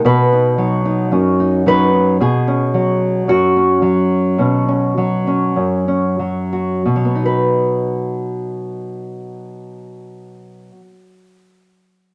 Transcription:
0.05 1.12 B2 medium
0.05 1.66 B4 medium
0.33 0.57 D#4 soft
0.58 1.65 F#3 medium
0.58 0.84 D#4 soft
0.85 1.39 D#4 soft
1.12 2.20 F#2 medium
1.12 2.17 C#4 soft
1.40 1.66 D#4 soft
1.66 2.17 F#3 medium
1.66 1.93 D#4 soft
1.66 2.21 B4 medium
1.94 2.17 D#4 soft
2.20 3.28 B2 medium
2.20 3.28 G#4 medium
2.48 3.55 C#4 soft
2.74 3.82 F#3 medium
3.28 4.39 F#2 medium
3.28 6.51 F#4 medium
3.57 4.36 C#4 soft
3.82 4.97 F#3 medium
4.38 5.57 B2 medium
4.38 4.67 C#4 soft
4.68 5.26 C#4 soft
4.97 6.18 F#3 medium
5.27 5.87 C#4 soft
5.56 6.85 F#2 soft
5.88 6.82 C#4 soft
6.19 6.81 F#3 soft
6.53 7.25 F#4 soft
6.85 10.70 B2 soft
6.96 10.80 F#3 soft
7.05 10.89 B3 soft
7.15 11.00 D#4 soft
7.26 11.06 B4 soft

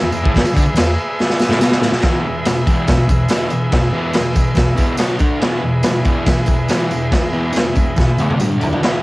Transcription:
0.00 0.11 E2 medium
0.00 1.99 G#4 medium
0.00 1.99 B4 medium
0.00 1.99 E5 medium
0.12 0.23 E2 medium
0.12 tambourine medium
0.22 0.33 A2 loud
0.22 kick loud
0.34 0.42 E2 loud
0.34 kick loud
0.34 snare loud
0.34 tambourine soft
0.34 crash medium
0.44 muted distorted electric guitar stroke medium
0.44 tambourine medium
0.53 0.64 D3 loud
0.53 kick loud
0.53 tambourine medium
0.65 muted distorted electric guitar stroke medium
0.65 tambourine soft
0.74 0.92 E2 medium
0.74 snare loud
0.74 tambourine medium
0.74 crash medium
0.98 tambourine soft
1.19 snare medium
1.19 tambourine soft
1.29 snare medium
1.29 tambourine soft
1.39 snare medium
1.39 tambourine medium
1.49 1.60 A2 loud
1.49 snare medium
1.49 tambourine soft
1.60 1.81 B2 loud
1.60 snare medium
1.60 tambourine loud
1.72 snare medium
1.82 1.92 A2 loud
1.82 snare loud
1.82 tambourine medium
1.92 2.03 B2 loud
1.92 snare medium
2.00 2.23 E2 medium
2.00 4.94 G#4 medium
2.00 4.96 B4 medium
2.00 4.96 E5 medium
2.00 kick loud
2.00 snare loud
2.00 crash medium
2.04 2.24 B2 loud
2.04 2.24 E3 loud
2.25 2.44 E2 medium
2.25 2.44 B2 medium
2.45 2.65 E2 medium
2.45 2.65 B2 medium
2.45 snare loud
2.45 tambourine medium
2.45 crash medium
2.66 2.86 E2 medium
2.66 2.87 B2 medium
2.66 2.87 E3 loud
2.66 kick medium
2.66 tambourine medium
2.87 3.07 E2 medium
2.87 3.07 B2 medium
2.87 kick loud
2.87 snare loud
2.87 tambourine medium
2.87 crash medium
3.08 3.27 E2 medium
3.08 3.28 B2 medium
3.08 kick medium
3.08 tambourine medium
3.28 3.49 E2 medium
3.28 3.49 B2 medium
3.28 3.50 E3 medium
3.28 snare loud
3.28 tambourine loud
3.28 crash medium
3.50 3.70 E2 medium
3.50 3.70 B2 medium
3.50 tambourine medium
3.71 3.90 E2 medium
3.71 3.91 B2 medium
3.71 kick loud
3.71 snare loud
3.71 crash medium
3.92 4.11 E2 medium
3.92 4.11 B2 medium
3.92 4.14 E3 loud
4.12 4.33 E2 medium
4.12 4.33 B2 medium
4.12 snare loud
4.12 tambourine medium
4.12 crash medium
4.34 4.54 E2 medium
4.34 4.54 B2 medium
4.34 kick medium
4.34 tambourine medium
4.55 4.74 E2 medium
4.55 4.75 B2 medium
4.55 kick loud
4.55 snare loud
4.55 tambourine medium
4.55 crash medium
4.75 4.97 E2 medium
4.75 4.95 B2 medium
4.75 4.98 E3 medium
4.75 kick medium
4.75 tambourine medium
4.97 5.18 B2 medium
4.97 5.19 F#3 loud
4.97 5.20 B3 loud
4.97 snare loud
4.97 tambourine loud
4.97 crash medium
5.19 5.40 D3 medium
5.19 5.41 A3 loud
5.19 5.41 D4 medium
5.19 kick loud
5.19 tambourine medium
5.38 5.62 E2 medium
5.38 8.34 E4 medium
5.38 8.35 G#4 medium
5.38 8.35 B4 medium
5.38 crash medium
5.42 5.62 B2 loud
5.42 5.62 E3 loud
5.42 snare loud
5.63 5.82 E2 medium
5.63 5.82 B2 medium
5.83 6.03 E2 medium
5.83 6.04 B2 medium
5.83 snare loud
5.83 tambourine medium
5.83 crash medium
6.05 6.25 E2 medium
6.05 6.25 B2 medium
6.05 6.26 E3 loud
6.05 kick medium
6.05 tambourine medium
6.26 6.46 E2 medium
6.26 6.46 B2 medium
6.26 kick loud
6.26 snare loud
6.26 tambourine medium
6.26 crash medium
6.46 6.67 E2 medium
6.46 6.67 B2 medium
6.46 kick medium
6.46 tambourine medium
6.68 6.90 E2 medium
6.68 6.90 B2 medium
6.68 6.90 E3 loud
6.68 snare loud
6.68 tambourine medium
6.68 crash medium
6.91 7.10 E2 medium
6.91 7.10 B2 medium
6.91 tambourine medium
7.11 7.31 E2 medium
7.11 7.31 B2 medium
7.11 kick loud
7.11 snare loud
7.11 tambourine soft
7.11 crash medium
7.32 7.52 E2 medium
7.32 7.52 B2 medium
7.32 7.54 E3 loud
7.32 tambourine soft
7.53 7.73 E2 medium
7.53 7.73 B2 medium
7.53 tambourine medium
7.53 crash medium
7.57 snare loud
7.74 7.94 E2 medium
7.74 7.95 B2 medium
7.74 kick medium
7.74 tambourine medium
7.96 8.16 E2 medium
7.96 8.17 B2 medium
7.96 kick loud
7.96 snare medium
7.96 tambourine medium
8.17 8.38 E2 medium
8.17 8.39 B2 loud
8.17 8.39 E3 loud
8.17 high tom medium
8.17 tambourine medium
8.30 high tom medium
8.39 8.59 G2 medium
8.39 8.58 D3 medium
8.39 8.59 G3 medium
8.39 mid tom medium
8.39 tambourine loud
8.59 8.80 D3 medium
8.59 8.80 A3 medium
8.59 8.81 D4 loud
8.59 floor tom medium
8.59 tambourine medium
8.73 floor tom medium
8.81 9.02 E2 medium
8.81 9.02 B2 loud
8.81 9.02 E3 medium
8.81 9.03 E4 medium
8.81 snare loud
8.81 crash medium
8.86 9.03 G#4 medium
8.86 9.03 B4 medium

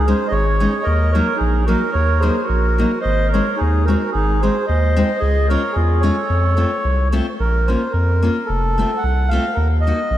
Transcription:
0.00 0.14 C#2 loud
0.06 0.19 G#3 medium
0.06 0.19 C#4 medium
0.06 0.20 D#4 medium
0.06 0.24 G#4 medium
0.06 0.27 C5 medium
0.28 0.67 G#1 medium
0.28 0.81 G#4 medium
0.28 0.30 C5 medium
0.28 0.34 D#5 medium
0.32 0.87 C#5 loud
0.60 0.72 G#3 medium
0.60 0.72 C#4 medium
0.60 0.72 D#4 medium
0.83 1.22 D#2 medium
0.83 1.11 A#4 medium
0.83 1.14 D#5 loud
1.12 1.26 F#3 medium
1.12 1.27 A#3 medium
1.12 1.27 D#4 medium
1.12 1.36 A#4 medium
1.12 1.37 C#5 medium
1.36 1.64 D#4 medium
1.36 1.65 G#4 medium
1.40 1.76 A#1 medium
1.64 1.80 F#3 medium
1.64 1.80 A#3 medium
1.64 1.91 F#4 medium
1.64 1.95 A#4 medium
1.69 1.80 D#4 medium
1.91 2.30 D#2 medium
1.91 2.19 A#4 medium
1.91 2.23 C#5 loud
2.19 2.35 F#3 medium
2.19 2.35 A#3 medium
2.19 2.35 D#4 medium
2.19 2.43 G#4 medium
2.19 2.46 C5 medium
2.43 2.98 F#4 medium
2.43 2.99 A#4 medium
2.49 2.85 A#1 medium
2.78 2.90 F#3 medium
2.78 2.91 A#3 medium
2.78 2.91 D#4 medium
3.01 3.27 C5 medium
3.01 3.30 D#5 medium
3.05 3.41 G#1 medium
3.28 3.55 A#4 medium
3.32 3.45 G#3 medium
3.32 3.46 C4 medium
3.32 3.46 D#4 medium
3.32 3.60 C#5 medium
3.56 3.85 D#4 medium
3.56 3.85 G#4 medium
3.61 3.96 D#2 medium
3.84 4.00 G#3 medium
3.84 4.12 F#4 medium
3.84 4.10 A#4 medium
3.89 4.00 C4 soft
3.89 4.01 D#4 medium
4.12 4.50 G#1 medium
4.12 4.40 D#4 medium
4.12 4.42 G#4 medium
4.41 4.54 G#3 medium
4.41 4.55 C4 medium
4.41 4.55 D#4 medium
4.41 4.65 G#4 medium
4.41 4.66 C5 medium
4.66 5.04 D#2 medium
4.66 5.17 C5 medium
4.66 5.17 D#5 medium
4.96 5.08 G#3 medium
4.96 5.08 C4 medium
4.96 5.08 D#4 medium
5.18 5.57 C#2 medium
5.18 5.47 G#4 medium
5.18 5.49 D#5 medium
5.49 5.62 G#3 medium
5.49 5.62 C#4 medium
5.49 5.62 F4 medium
5.49 5.73 A#4 medium
5.49 5.76 C#5 medium
5.72 6.11 E2 medium
5.72 6.02 F4 medium
5.72 6.03 G#4 medium
6.00 6.15 G#3 medium
6.00 6.15 C#4 medium
6.00 6.15 F4 medium
6.00 7.10 A4 medium
6.00 7.08 C#5 medium
6.30 6.66 F2 medium
6.57 6.69 A3 medium
6.57 6.70 C4 medium
6.57 6.70 F4 medium
6.85 7.21 C2 medium
7.12 7.25 A3 medium
7.12 7.25 C4 medium
7.12 7.26 F4 medium
7.40 7.76 A#1 medium
7.40 7.70 A#4 medium
7.67 7.80 A#3 soft
7.67 7.81 C#4 soft
7.67 7.81 F4 medium
7.67 7.92 C5 medium
7.92 8.30 F2 medium
7.92 8.50 A#4 medium
8.22 8.35 A#3 medium
8.22 8.35 C#4 soft
8.22 8.36 F4 medium
8.46 8.85 F1 medium
8.46 9.04 A4 medium
8.78 8.90 A3 medium
8.78 8.90 C4 medium
8.78 8.90 F4 medium
8.97 9.30 F#5 medium
9.04 9.39 C2 medium
9.29 9.44 A3 medium
9.29 9.57 F5 medium
9.33 9.44 C4 medium
9.33 9.44 F4 medium
9.54 9.93 D#2 medium
9.54 9.68 A#4 medium
9.81 10.18 D#5 medium
9.87 9.99 A#3 medium
9.87 9.99 D#4 soft
9.87 9.99 F#4 medium
10.11 10.18 A#1 medium

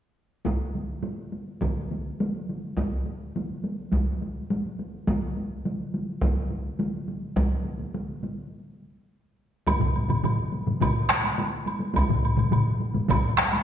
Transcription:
0.45 taiko medium
0.45 taiko high medium
0.60 taiko high soft
0.75 taiko high soft
1.03 taiko high medium
1.18 taiko high soft
1.32 taiko high soft
1.47 taiko high soft
1.61 taiko medium
1.61 taiko high medium
1.77 taiko high soft
1.91 taiko high soft
2.06 taiko high soft
2.20 taiko high medium
2.35 taiko high soft
2.49 taiko high soft
2.64 taiko high soft
2.77 taiko medium
2.77 taiko high medium
2.92 taiko high soft
3.06 taiko high soft
3.36 taiko high medium
3.50 taiko high soft
3.64 taiko high soft
3.93 taiko medium
3.93 taiko high medium
4.08 taiko high soft
4.22 taiko high soft
4.36 taiko high soft
4.50 taiko high medium
4.66 taiko high soft
4.79 taiko high soft
4.94 taiko high soft
5.07 taiko medium
5.07 taiko high medium
5.23 taiko high soft
5.37 taiko high soft
5.65 taiko high medium
5.80 taiko high soft
5.94 taiko high soft
6.09 taiko high soft
6.21 taiko medium
6.21 taiko high medium
6.37 taiko high soft
6.50 taiko high soft
6.65 taiko high soft
6.80 taiko high medium
6.94 taiko high soft
7.08 taiko high soft
7.23 taiko high soft
7.37 taiko medium
7.37 taiko high medium
7.52 taiko high soft
7.65 taiko high soft
7.79 taiko high soft
7.94 taiko high medium
8.09 taiko high soft
8.24 taiko high soft
8.38 taiko high soft
9.67 taiko medium
9.67 taiko high medium
9.67 high woodblock soft
9.80 taiko low-mid medium
9.80 taiko mid medium
9.96 taiko high soft
9.96 high woodblock soft
10.09 taiko low-mid medium
10.09 taiko mid medium
10.09 taiko high soft
10.09 high woodblock soft
10.23 taiko low-mid medium
10.23 taiko mid medium
10.23 taiko high soft
10.23 high woodblock soft
10.52 taiko high soft
10.66 taiko low-mid medium
10.66 taiko mid medium
10.66 taiko high soft
10.80 taiko medium
10.80 taiko low-mid medium
10.80 taiko mid medium
10.80 taiko high medium
10.80 high woodblock soft
11.09 taiko rim medium
11.09 taiko high soft
11.24 taiko high soft
11.24 high woodblock soft
11.38 taiko high medium
11.38 high woodblock soft
11.66 taiko high soft
11.66 high woodblock soft
11.80 taiko high soft
11.94 taiko medium
11.94 taiko high medium
11.94 high woodblock soft
12.09 taiko low-mid medium
12.09 taiko mid medium
12.23 taiko high soft
12.23 high woodblock soft
12.37 taiko low-mid medium
12.37 taiko mid medium
12.37 taiko high soft
12.37 high woodblock soft
12.52 taiko low-mid medium
12.52 taiko mid medium
12.52 taiko high medium
12.52 high woodblock soft
12.80 taiko high soft
12.94 taiko low-mid medium
12.94 taiko mid medium
12.94 taiko high soft
13.09 taiko loud
13.09 taiko low-mid medium
13.09 taiko mid medium
13.09 taiko high medium
13.09 high woodblock medium
13.37 taiko rim medium
13.37 taiko high soft
13.53 taiko high soft
13.53 high woodblock soft

